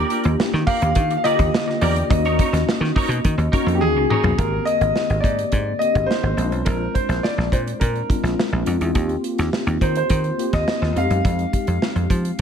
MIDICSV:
0, 0, Header, 1, 8, 480
1, 0, Start_track
1, 0, Key_signature, -3, "major"
1, 0, Tempo, 571429
1, 1764, Time_signature, 4, 2, 24, 8
1, 10424, End_track
2, 0, Start_track
2, 0, Title_t, "Grand piano"
2, 0, Program_c, 0, 0
2, 561, Note_on_c, 0, 77, 100
2, 954, Note_off_c, 0, 77, 0
2, 984, Note_on_c, 0, 77, 76
2, 1042, Note_on_c, 0, 75, 122
2, 1044, Note_off_c, 0, 77, 0
2, 1525, Note_on_c, 0, 74, 89
2, 1537, Note_off_c, 0, 75, 0
2, 1762, Note_on_c, 0, 75, 83
2, 1771, Note_off_c, 0, 74, 0
2, 3149, Note_on_c, 0, 67, 67
2, 3167, Note_off_c, 0, 75, 0
2, 3199, Note_on_c, 0, 68, 97
2, 3205, Note_off_c, 0, 67, 0
2, 3433, Note_off_c, 0, 68, 0
2, 3446, Note_on_c, 0, 68, 86
2, 3679, Note_on_c, 0, 70, 80
2, 3690, Note_off_c, 0, 68, 0
2, 3909, Note_on_c, 0, 75, 104
2, 3927, Note_off_c, 0, 70, 0
2, 4372, Note_on_c, 0, 74, 83
2, 4410, Note_off_c, 0, 75, 0
2, 4833, Note_off_c, 0, 74, 0
2, 4864, Note_on_c, 0, 75, 90
2, 5094, Note_on_c, 0, 72, 84
2, 5096, Note_off_c, 0, 75, 0
2, 5588, Note_on_c, 0, 70, 79
2, 5603, Note_off_c, 0, 72, 0
2, 5818, Note_off_c, 0, 70, 0
2, 5833, Note_on_c, 0, 72, 76
2, 6076, Note_on_c, 0, 74, 87
2, 6086, Note_off_c, 0, 72, 0
2, 6321, Note_on_c, 0, 72, 66
2, 6327, Note_off_c, 0, 74, 0
2, 6375, Note_off_c, 0, 72, 0
2, 6550, Note_on_c, 0, 70, 66
2, 7004, Note_off_c, 0, 70, 0
2, 8247, Note_on_c, 0, 72, 68
2, 8361, Note_off_c, 0, 72, 0
2, 8374, Note_on_c, 0, 72, 75
2, 8817, Note_off_c, 0, 72, 0
2, 8849, Note_on_c, 0, 75, 88
2, 9219, Note_off_c, 0, 75, 0
2, 9219, Note_on_c, 0, 77, 90
2, 10424, Note_off_c, 0, 77, 0
2, 10424, End_track
3, 0, Start_track
3, 0, Title_t, "Clean electric guitar"
3, 0, Program_c, 1, 27
3, 0, Note_on_c, 1, 70, 87
3, 0, Note_on_c, 1, 74, 90
3, 87, Note_off_c, 1, 70, 0
3, 90, Note_on_c, 1, 67, 74
3, 91, Note_off_c, 1, 74, 0
3, 97, Note_on_c, 1, 70, 66
3, 101, Note_on_c, 1, 74, 76
3, 195, Note_off_c, 1, 74, 0
3, 210, Note_off_c, 1, 70, 0
3, 228, Note_off_c, 1, 67, 0
3, 568, Note_on_c, 1, 67, 90
3, 580, Note_on_c, 1, 70, 96
3, 588, Note_on_c, 1, 74, 118
3, 686, Note_off_c, 1, 74, 0
3, 694, Note_off_c, 1, 70, 0
3, 745, Note_off_c, 1, 67, 0
3, 1046, Note_on_c, 1, 67, 97
3, 1054, Note_on_c, 1, 70, 96
3, 1059, Note_on_c, 1, 74, 120
3, 1160, Note_off_c, 1, 74, 0
3, 1173, Note_off_c, 1, 70, 0
3, 1223, Note_off_c, 1, 67, 0
3, 1525, Note_on_c, 1, 67, 92
3, 1534, Note_on_c, 1, 70, 89
3, 1538, Note_on_c, 1, 74, 85
3, 1639, Note_off_c, 1, 74, 0
3, 1648, Note_off_c, 1, 70, 0
3, 1702, Note_off_c, 1, 67, 0
3, 1895, Note_on_c, 1, 73, 83
3, 1897, Note_on_c, 1, 70, 71
3, 1904, Note_on_c, 1, 63, 63
3, 2002, Note_off_c, 1, 63, 0
3, 2008, Note_off_c, 1, 70, 0
3, 2012, Note_on_c, 1, 63, 68
3, 2015, Note_off_c, 1, 73, 0
3, 2018, Note_on_c, 1, 70, 75
3, 2026, Note_on_c, 1, 73, 85
3, 2124, Note_off_c, 1, 73, 0
3, 2136, Note_off_c, 1, 70, 0
3, 2147, Note_off_c, 1, 63, 0
3, 2484, Note_on_c, 1, 63, 89
3, 2491, Note_on_c, 1, 70, 97
3, 2500, Note_on_c, 1, 73, 104
3, 2600, Note_off_c, 1, 73, 0
3, 2612, Note_off_c, 1, 70, 0
3, 2661, Note_off_c, 1, 63, 0
3, 2958, Note_on_c, 1, 63, 74
3, 2966, Note_on_c, 1, 70, 98
3, 2975, Note_on_c, 1, 73, 92
3, 3078, Note_off_c, 1, 73, 0
3, 3092, Note_off_c, 1, 70, 0
3, 3138, Note_off_c, 1, 63, 0
3, 3446, Note_on_c, 1, 63, 96
3, 3454, Note_on_c, 1, 70, 92
3, 3462, Note_on_c, 1, 73, 94
3, 3560, Note_off_c, 1, 73, 0
3, 3570, Note_off_c, 1, 70, 0
3, 3622, Note_off_c, 1, 63, 0
3, 10424, End_track
4, 0, Start_track
4, 0, Title_t, "Tine electric piano"
4, 0, Program_c, 2, 4
4, 0, Control_c, 2, 64, 127
4, 0, Note_on_c, 2, 58, 79
4, 0, Note_on_c, 2, 62, 77
4, 0, Note_on_c, 2, 65, 82
4, 0, Note_on_c, 2, 67, 96
4, 379, Note_off_c, 2, 58, 0
4, 381, Note_off_c, 2, 62, 0
4, 383, Note_off_c, 2, 65, 0
4, 383, Note_off_c, 2, 67, 0
4, 1035, Note_on_c, 2, 58, 83
4, 1037, Note_on_c, 2, 50, 76
4, 1040, Note_on_c, 2, 65, 83
4, 1044, Note_on_c, 2, 67, 80
4, 1621, Note_off_c, 2, 58, 0
4, 1623, Note_off_c, 2, 50, 0
4, 1624, Note_off_c, 2, 65, 0
4, 1626, Note_off_c, 2, 67, 0
4, 1758, Note_on_c, 2, 58, 70
4, 1762, Note_on_c, 2, 61, 70
4, 1763, Note_on_c, 2, 63, 69
4, 1768, Note_on_c, 2, 66, 85
4, 1773, Control_c, 2, 64, 0
4, 1934, Control_c, 2, 64, 127
4, 2536, Note_off_c, 2, 58, 0
4, 2538, Note_off_c, 2, 61, 0
4, 2539, Note_off_c, 2, 63, 0
4, 2541, Note_off_c, 2, 66, 0
4, 2957, Note_on_c, 2, 58, 88
4, 2958, Note_on_c, 2, 61, 85
4, 2962, Note_on_c, 2, 63, 83
4, 2966, Note_on_c, 2, 66, 103
4, 3542, Note_off_c, 2, 58, 0
4, 3542, Note_off_c, 2, 61, 0
4, 3544, Note_off_c, 2, 63, 0
4, 3546, Note_off_c, 2, 66, 0
4, 3679, Note_on_c, 2, 58, 63
4, 3683, Note_on_c, 2, 60, 57
4, 3685, Note_on_c, 2, 50, 58
4, 3689, Note_on_c, 2, 67, 66
4, 3693, Control_c, 2, 64, 0
4, 3832, Control_c, 2, 64, 127
4, 4457, Note_off_c, 2, 58, 0
4, 4459, Note_off_c, 2, 60, 0
4, 4460, Note_off_c, 2, 50, 0
4, 4462, Note_off_c, 2, 67, 0
4, 4873, Note_on_c, 2, 58, 61
4, 4878, Note_on_c, 2, 60, 58
4, 4880, Note_on_c, 2, 62, 61
4, 4884, Note_on_c, 2, 67, 73
4, 5266, Note_off_c, 2, 58, 0
4, 5269, Note_off_c, 2, 60, 0
4, 5269, Note_off_c, 2, 62, 0
4, 5272, Note_off_c, 2, 67, 0
4, 5351, Note_on_c, 2, 56, 65
4, 5355, Note_on_c, 2, 60, 51
4, 5359, Note_on_c, 2, 62, 52
4, 5363, Note_on_c, 2, 63, 57
4, 5372, Control_c, 2, 64, 0
4, 5414, Note_on_c, 2, 65, 66
4, 5417, Note_off_c, 2, 63, 0
4, 5501, Control_c, 2, 64, 127
4, 6134, Note_off_c, 2, 56, 0
4, 6136, Note_off_c, 2, 60, 0
4, 6138, Note_off_c, 2, 62, 0
4, 6166, Note_off_c, 2, 65, 0
4, 6791, Note_on_c, 2, 56, 64
4, 6795, Note_on_c, 2, 60, 61
4, 6797, Note_on_c, 2, 62, 70
4, 6799, Note_on_c, 2, 65, 80
4, 7186, Note_off_c, 2, 56, 0
4, 7188, Note_off_c, 2, 60, 0
4, 7189, Note_off_c, 2, 62, 0
4, 7190, Note_off_c, 2, 65, 0
4, 7263, Note_on_c, 2, 56, 65
4, 7270, Note_on_c, 2, 60, 66
4, 7271, Note_on_c, 2, 62, 61
4, 7272, Note_on_c, 2, 65, 74
4, 7468, Note_off_c, 2, 56, 0
4, 7472, Note_off_c, 2, 60, 0
4, 7472, Note_off_c, 2, 62, 0
4, 7473, Note_off_c, 2, 65, 0
4, 7504, Note_on_c, 2, 58, 76
4, 7509, Note_on_c, 2, 60, 63
4, 7512, Note_on_c, 2, 65, 79
4, 7515, Note_on_c, 2, 67, 85
4, 7537, Control_c, 2, 64, 0
4, 7689, Control_c, 2, 64, 127
4, 8292, Note_off_c, 2, 58, 0
4, 8294, Note_off_c, 2, 60, 0
4, 8296, Note_off_c, 2, 65, 0
4, 8298, Note_off_c, 2, 67, 0
4, 8715, Note_on_c, 2, 58, 71
4, 8719, Note_on_c, 2, 60, 57
4, 8724, Note_on_c, 2, 65, 63
4, 8726, Note_on_c, 2, 67, 81
4, 9109, Note_off_c, 2, 58, 0
4, 9112, Note_off_c, 2, 60, 0
4, 9114, Note_off_c, 2, 65, 0
4, 9115, Note_off_c, 2, 67, 0
4, 9196, Note_on_c, 2, 56, 70
4, 9201, Note_on_c, 2, 60, 60
4, 9203, Note_on_c, 2, 63, 62
4, 9206, Note_on_c, 2, 67, 73
4, 9217, Control_c, 2, 64, 0
4, 9384, Control_c, 2, 64, 127
4, 9979, Note_off_c, 2, 56, 0
4, 9982, Note_off_c, 2, 60, 0
4, 9982, Note_off_c, 2, 63, 0
4, 9984, Note_off_c, 2, 67, 0
4, 10424, End_track
5, 0, Start_track
5, 0, Title_t, "Slap bass"
5, 0, Program_c, 3, 36
5, 209, Note_on_c, 3, 39, 95
5, 291, Note_off_c, 3, 39, 0
5, 450, Note_on_c, 3, 51, 104
5, 532, Note_off_c, 3, 51, 0
5, 688, Note_on_c, 3, 39, 97
5, 770, Note_off_c, 3, 39, 0
5, 804, Note_on_c, 3, 51, 105
5, 970, Note_off_c, 3, 51, 0
5, 1166, Note_on_c, 3, 39, 94
5, 1248, Note_off_c, 3, 39, 0
5, 1525, Note_on_c, 3, 40, 94
5, 1690, Note_off_c, 3, 40, 0
5, 1766, Note_on_c, 3, 39, 115
5, 2013, Note_off_c, 3, 39, 0
5, 2123, Note_on_c, 3, 39, 82
5, 2205, Note_off_c, 3, 39, 0
5, 2357, Note_on_c, 3, 51, 102
5, 2442, Note_off_c, 3, 51, 0
5, 2592, Note_on_c, 3, 47, 93
5, 2678, Note_off_c, 3, 47, 0
5, 2728, Note_on_c, 3, 51, 96
5, 2809, Note_off_c, 3, 51, 0
5, 2836, Note_on_c, 3, 39, 90
5, 2921, Note_off_c, 3, 39, 0
5, 3077, Note_on_c, 3, 41, 90
5, 3196, Note_off_c, 3, 41, 0
5, 3196, Note_on_c, 3, 39, 97
5, 3316, Note_off_c, 3, 39, 0
5, 3316, Note_on_c, 3, 37, 93
5, 3401, Note_off_c, 3, 37, 0
5, 3556, Note_on_c, 3, 35, 87
5, 3641, Note_off_c, 3, 35, 0
5, 3683, Note_on_c, 3, 32, 90
5, 3848, Note_off_c, 3, 32, 0
5, 4038, Note_on_c, 3, 32, 72
5, 4122, Note_off_c, 3, 32, 0
5, 4281, Note_on_c, 3, 32, 78
5, 4364, Note_off_c, 3, 32, 0
5, 4397, Note_on_c, 3, 44, 77
5, 4564, Note_off_c, 3, 44, 0
5, 4640, Note_on_c, 3, 44, 85
5, 4806, Note_off_c, 3, 44, 0
5, 5002, Note_on_c, 3, 32, 78
5, 5085, Note_off_c, 3, 32, 0
5, 5232, Note_on_c, 3, 32, 78
5, 5319, Note_off_c, 3, 32, 0
5, 5350, Note_on_c, 3, 34, 87
5, 5475, Note_off_c, 3, 34, 0
5, 5475, Note_on_c, 3, 35, 87
5, 5560, Note_off_c, 3, 35, 0
5, 5598, Note_on_c, 3, 34, 90
5, 5765, Note_off_c, 3, 34, 0
5, 5953, Note_on_c, 3, 34, 75
5, 6039, Note_off_c, 3, 34, 0
5, 6197, Note_on_c, 3, 34, 69
5, 6282, Note_off_c, 3, 34, 0
5, 6317, Note_on_c, 3, 46, 88
5, 6485, Note_off_c, 3, 46, 0
5, 6561, Note_on_c, 3, 46, 86
5, 6728, Note_off_c, 3, 46, 0
5, 6915, Note_on_c, 3, 34, 77
5, 7001, Note_off_c, 3, 34, 0
5, 7159, Note_on_c, 3, 34, 86
5, 7244, Note_off_c, 3, 34, 0
5, 7281, Note_on_c, 3, 41, 89
5, 7365, Note_off_c, 3, 41, 0
5, 7400, Note_on_c, 3, 40, 77
5, 7485, Note_off_c, 3, 40, 0
5, 7519, Note_on_c, 3, 39, 100
5, 7687, Note_off_c, 3, 39, 0
5, 7885, Note_on_c, 3, 39, 71
5, 7968, Note_off_c, 3, 39, 0
5, 8119, Note_on_c, 3, 39, 73
5, 8205, Note_off_c, 3, 39, 0
5, 8242, Note_on_c, 3, 51, 87
5, 8409, Note_off_c, 3, 51, 0
5, 8485, Note_on_c, 3, 51, 83
5, 8651, Note_off_c, 3, 51, 0
5, 8846, Note_on_c, 3, 39, 77
5, 8929, Note_off_c, 3, 39, 0
5, 9086, Note_on_c, 3, 39, 78
5, 9170, Note_off_c, 3, 39, 0
5, 9205, Note_on_c, 3, 41, 84
5, 9288, Note_off_c, 3, 41, 0
5, 9325, Note_on_c, 3, 42, 84
5, 9409, Note_off_c, 3, 42, 0
5, 9450, Note_on_c, 3, 41, 90
5, 9615, Note_off_c, 3, 41, 0
5, 9807, Note_on_c, 3, 41, 78
5, 9890, Note_off_c, 3, 41, 0
5, 10042, Note_on_c, 3, 41, 76
5, 10127, Note_off_c, 3, 41, 0
5, 10165, Note_on_c, 3, 53, 87
5, 10332, Note_off_c, 3, 53, 0
5, 10424, End_track
6, 0, Start_track
6, 0, Title_t, "Muted clean electric guitar strokes"
6, 205, Note_on_c, 9, 29, 49
6, 289, Note_off_c, 9, 29, 0
6, 450, Note_on_c, 9, 29, 51
6, 534, Note_off_c, 9, 29, 0
6, 696, Note_on_c, 9, 29, 50
6, 780, Note_off_c, 9, 29, 0
6, 934, Note_on_c, 9, 29, 42
6, 1018, Note_off_c, 9, 29, 0
6, 1170, Note_on_c, 9, 29, 55
6, 1254, Note_off_c, 9, 29, 0
6, 1293, Note_on_c, 9, 29, 43
6, 1377, Note_off_c, 9, 29, 0
6, 1409, Note_on_c, 9, 29, 45
6, 1493, Note_off_c, 9, 29, 0
6, 1650, Note_on_c, 9, 29, 56
6, 1734, Note_off_c, 9, 29, 0
6, 1771, Note_on_c, 9, 29, 49
6, 1855, Note_off_c, 9, 29, 0
6, 2134, Note_on_c, 9, 29, 44
6, 2218, Note_off_c, 9, 29, 0
6, 2364, Note_on_c, 9, 29, 52
6, 2448, Note_off_c, 9, 29, 0
6, 2610, Note_on_c, 9, 29, 52
6, 2694, Note_off_c, 9, 29, 0
6, 2842, Note_on_c, 9, 29, 43
6, 2926, Note_off_c, 9, 29, 0
6, 3088, Note_on_c, 9, 29, 60
6, 3172, Note_off_c, 9, 29, 0
6, 3213, Note_on_c, 9, 29, 42
6, 3297, Note_off_c, 9, 29, 0
6, 3332, Note_on_c, 9, 29, 51
6, 3416, Note_off_c, 9, 29, 0
6, 3570, Note_on_c, 9, 29, 48
6, 3654, Note_off_c, 9, 29, 0
6, 10424, End_track
7, 0, Start_track
7, 0, Title_t, "Muted slap bass strokes"
7, 330, Note_on_c, 9, 29, 52
7, 414, Note_off_c, 9, 29, 0
7, 2237, Note_on_c, 9, 29, 52
7, 2321, Note_off_c, 9, 29, 0
7, 10424, End_track
8, 0, Start_track
8, 0, Title_t, "Drums"
8, 86, Note_on_c, 9, 42, 73
8, 170, Note_off_c, 9, 42, 0
8, 199, Note_on_c, 9, 42, 47
8, 283, Note_off_c, 9, 42, 0
8, 334, Note_on_c, 9, 38, 105
8, 418, Note_off_c, 9, 38, 0
8, 454, Note_on_c, 9, 38, 36
8, 538, Note_off_c, 9, 38, 0
8, 563, Note_on_c, 9, 36, 92
8, 566, Note_on_c, 9, 46, 85
8, 647, Note_off_c, 9, 36, 0
8, 650, Note_off_c, 9, 46, 0
8, 687, Note_on_c, 9, 42, 55
8, 771, Note_off_c, 9, 42, 0
8, 801, Note_on_c, 9, 42, 90
8, 806, Note_on_c, 9, 36, 97
8, 885, Note_off_c, 9, 42, 0
8, 890, Note_off_c, 9, 36, 0
8, 928, Note_on_c, 9, 42, 41
8, 1012, Note_off_c, 9, 42, 0
8, 1052, Note_on_c, 9, 42, 77
8, 1136, Note_off_c, 9, 42, 0
8, 1168, Note_on_c, 9, 36, 96
8, 1173, Note_on_c, 9, 42, 48
8, 1252, Note_off_c, 9, 36, 0
8, 1257, Note_off_c, 9, 42, 0
8, 1297, Note_on_c, 9, 38, 119
8, 1381, Note_off_c, 9, 38, 0
8, 1423, Note_on_c, 9, 38, 41
8, 1507, Note_off_c, 9, 38, 0
8, 1524, Note_on_c, 9, 46, 67
8, 1608, Note_off_c, 9, 46, 0
8, 1649, Note_on_c, 9, 42, 53
8, 1733, Note_off_c, 9, 42, 0
8, 1768, Note_on_c, 9, 36, 127
8, 1775, Note_on_c, 9, 42, 91
8, 1852, Note_off_c, 9, 36, 0
8, 1859, Note_off_c, 9, 42, 0
8, 1889, Note_on_c, 9, 42, 38
8, 1973, Note_off_c, 9, 42, 0
8, 2008, Note_on_c, 9, 36, 93
8, 2010, Note_on_c, 9, 42, 80
8, 2092, Note_off_c, 9, 36, 0
8, 2094, Note_off_c, 9, 42, 0
8, 2132, Note_on_c, 9, 42, 57
8, 2145, Note_on_c, 9, 38, 40
8, 2216, Note_off_c, 9, 42, 0
8, 2229, Note_off_c, 9, 38, 0
8, 2256, Note_on_c, 9, 38, 103
8, 2340, Note_off_c, 9, 38, 0
8, 2385, Note_on_c, 9, 38, 36
8, 2469, Note_off_c, 9, 38, 0
8, 2487, Note_on_c, 9, 36, 92
8, 2499, Note_on_c, 9, 46, 84
8, 2571, Note_off_c, 9, 36, 0
8, 2583, Note_off_c, 9, 46, 0
8, 2618, Note_on_c, 9, 42, 53
8, 2702, Note_off_c, 9, 42, 0
8, 2726, Note_on_c, 9, 42, 94
8, 2727, Note_on_c, 9, 36, 89
8, 2810, Note_off_c, 9, 42, 0
8, 2811, Note_off_c, 9, 36, 0
8, 2847, Note_on_c, 9, 42, 34
8, 2931, Note_off_c, 9, 42, 0
8, 2966, Note_on_c, 9, 36, 100
8, 2971, Note_on_c, 9, 42, 76
8, 3050, Note_off_c, 9, 36, 0
8, 3055, Note_off_c, 9, 42, 0
8, 3094, Note_on_c, 9, 42, 48
8, 3178, Note_off_c, 9, 42, 0
8, 3211, Note_on_c, 9, 48, 61
8, 3295, Note_off_c, 9, 48, 0
8, 3448, Note_on_c, 9, 45, 85
8, 3532, Note_off_c, 9, 45, 0
8, 3564, Note_on_c, 9, 43, 96
8, 3648, Note_off_c, 9, 43, 0
8, 3683, Note_on_c, 9, 42, 77
8, 3684, Note_on_c, 9, 36, 114
8, 3767, Note_off_c, 9, 42, 0
8, 3768, Note_off_c, 9, 36, 0
8, 3924, Note_on_c, 9, 42, 60
8, 4008, Note_off_c, 9, 42, 0
8, 4043, Note_on_c, 9, 42, 47
8, 4127, Note_off_c, 9, 42, 0
8, 4163, Note_on_c, 9, 38, 80
8, 4247, Note_off_c, 9, 38, 0
8, 4282, Note_on_c, 9, 42, 33
8, 4366, Note_off_c, 9, 42, 0
8, 4400, Note_on_c, 9, 36, 82
8, 4407, Note_on_c, 9, 42, 70
8, 4484, Note_off_c, 9, 36, 0
8, 4491, Note_off_c, 9, 42, 0
8, 4525, Note_on_c, 9, 42, 51
8, 4609, Note_off_c, 9, 42, 0
8, 4635, Note_on_c, 9, 42, 72
8, 4640, Note_on_c, 9, 36, 79
8, 4719, Note_off_c, 9, 42, 0
8, 4724, Note_off_c, 9, 36, 0
8, 4885, Note_on_c, 9, 42, 59
8, 4969, Note_off_c, 9, 42, 0
8, 5001, Note_on_c, 9, 36, 80
8, 5002, Note_on_c, 9, 42, 36
8, 5085, Note_off_c, 9, 36, 0
8, 5086, Note_off_c, 9, 42, 0
8, 5130, Note_on_c, 9, 38, 92
8, 5214, Note_off_c, 9, 38, 0
8, 5361, Note_on_c, 9, 42, 60
8, 5445, Note_off_c, 9, 42, 0
8, 5478, Note_on_c, 9, 42, 42
8, 5562, Note_off_c, 9, 42, 0
8, 5594, Note_on_c, 9, 42, 88
8, 5598, Note_on_c, 9, 36, 109
8, 5678, Note_off_c, 9, 42, 0
8, 5682, Note_off_c, 9, 36, 0
8, 5840, Note_on_c, 9, 36, 75
8, 5842, Note_on_c, 9, 42, 58
8, 5924, Note_off_c, 9, 36, 0
8, 5926, Note_off_c, 9, 42, 0
8, 5959, Note_on_c, 9, 42, 41
8, 5973, Note_on_c, 9, 38, 28
8, 6043, Note_off_c, 9, 42, 0
8, 6057, Note_off_c, 9, 38, 0
8, 6084, Note_on_c, 9, 38, 84
8, 6168, Note_off_c, 9, 38, 0
8, 6212, Note_on_c, 9, 38, 27
8, 6296, Note_off_c, 9, 38, 0
8, 6318, Note_on_c, 9, 36, 80
8, 6325, Note_on_c, 9, 42, 66
8, 6402, Note_off_c, 9, 36, 0
8, 6409, Note_off_c, 9, 42, 0
8, 6447, Note_on_c, 9, 42, 48
8, 6531, Note_off_c, 9, 42, 0
8, 6560, Note_on_c, 9, 42, 83
8, 6561, Note_on_c, 9, 36, 80
8, 6644, Note_off_c, 9, 42, 0
8, 6645, Note_off_c, 9, 36, 0
8, 6682, Note_on_c, 9, 42, 29
8, 6766, Note_off_c, 9, 42, 0
8, 6802, Note_on_c, 9, 36, 93
8, 6809, Note_on_c, 9, 42, 67
8, 6886, Note_off_c, 9, 36, 0
8, 6893, Note_off_c, 9, 42, 0
8, 6928, Note_on_c, 9, 42, 38
8, 6933, Note_on_c, 9, 38, 34
8, 7012, Note_off_c, 9, 42, 0
8, 7017, Note_off_c, 9, 38, 0
8, 7052, Note_on_c, 9, 38, 96
8, 7136, Note_off_c, 9, 38, 0
8, 7277, Note_on_c, 9, 42, 63
8, 7361, Note_off_c, 9, 42, 0
8, 7401, Note_on_c, 9, 42, 50
8, 7485, Note_off_c, 9, 42, 0
8, 7519, Note_on_c, 9, 42, 78
8, 7521, Note_on_c, 9, 36, 104
8, 7603, Note_off_c, 9, 42, 0
8, 7605, Note_off_c, 9, 36, 0
8, 7639, Note_on_c, 9, 42, 35
8, 7723, Note_off_c, 9, 42, 0
8, 7762, Note_on_c, 9, 42, 68
8, 7846, Note_off_c, 9, 42, 0
8, 7882, Note_on_c, 9, 42, 46
8, 7896, Note_on_c, 9, 38, 32
8, 7966, Note_off_c, 9, 42, 0
8, 7980, Note_off_c, 9, 38, 0
8, 8006, Note_on_c, 9, 38, 89
8, 8090, Note_off_c, 9, 38, 0
8, 8122, Note_on_c, 9, 42, 30
8, 8206, Note_off_c, 9, 42, 0
8, 8243, Note_on_c, 9, 36, 81
8, 8245, Note_on_c, 9, 42, 70
8, 8327, Note_off_c, 9, 36, 0
8, 8329, Note_off_c, 9, 42, 0
8, 8362, Note_on_c, 9, 42, 50
8, 8446, Note_off_c, 9, 42, 0
8, 8480, Note_on_c, 9, 42, 86
8, 8485, Note_on_c, 9, 36, 88
8, 8564, Note_off_c, 9, 42, 0
8, 8569, Note_off_c, 9, 36, 0
8, 8602, Note_on_c, 9, 42, 31
8, 8686, Note_off_c, 9, 42, 0
8, 8730, Note_on_c, 9, 42, 70
8, 8814, Note_off_c, 9, 42, 0
8, 8845, Note_on_c, 9, 42, 46
8, 8846, Note_on_c, 9, 36, 84
8, 8850, Note_on_c, 9, 38, 32
8, 8929, Note_off_c, 9, 42, 0
8, 8930, Note_off_c, 9, 36, 0
8, 8934, Note_off_c, 9, 38, 0
8, 8969, Note_on_c, 9, 38, 103
8, 9053, Note_off_c, 9, 38, 0
8, 9096, Note_on_c, 9, 38, 33
8, 9180, Note_off_c, 9, 38, 0
8, 9211, Note_on_c, 9, 42, 62
8, 9295, Note_off_c, 9, 42, 0
8, 9329, Note_on_c, 9, 42, 50
8, 9413, Note_off_c, 9, 42, 0
8, 9448, Note_on_c, 9, 36, 113
8, 9453, Note_on_c, 9, 42, 81
8, 9532, Note_off_c, 9, 36, 0
8, 9537, Note_off_c, 9, 42, 0
8, 9567, Note_on_c, 9, 42, 33
8, 9651, Note_off_c, 9, 42, 0
8, 9688, Note_on_c, 9, 36, 80
8, 9689, Note_on_c, 9, 42, 69
8, 9772, Note_off_c, 9, 36, 0
8, 9773, Note_off_c, 9, 42, 0
8, 9805, Note_on_c, 9, 42, 45
8, 9889, Note_off_c, 9, 42, 0
8, 9931, Note_on_c, 9, 38, 96
8, 10015, Note_off_c, 9, 38, 0
8, 10048, Note_on_c, 9, 42, 29
8, 10132, Note_off_c, 9, 42, 0
8, 10165, Note_on_c, 9, 36, 86
8, 10169, Note_on_c, 9, 42, 69
8, 10249, Note_off_c, 9, 36, 0
8, 10253, Note_off_c, 9, 42, 0
8, 10289, Note_on_c, 9, 42, 51
8, 10373, Note_off_c, 9, 42, 0
8, 10424, End_track
0, 0, End_of_file